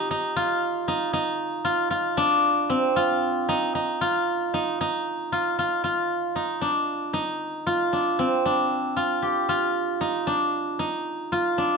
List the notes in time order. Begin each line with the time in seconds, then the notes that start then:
Already playing: D#4 F4 G4
0.11 D#4
0.36 F4
0.88 D#4
1.13 D#4
1.65 F4
1.90 F4
2.17 D4
2.70 C4
2.96 F4
3.49 D#4
3.75 D#4
4.01 F4
4.54 D#4
4.81 D#4
5.32 F4
5.59 F4
5.84 F4
6.36 D#4
6.61 D4
7.13 D#4
7.67 F4
7.93 D4
8.19 C4
8.45 D4
8.96 F4
9.22 G4
9.49 F4
10.01 D#4
10.27 D4
10.79 D#4
11.32 F4
11.58 D4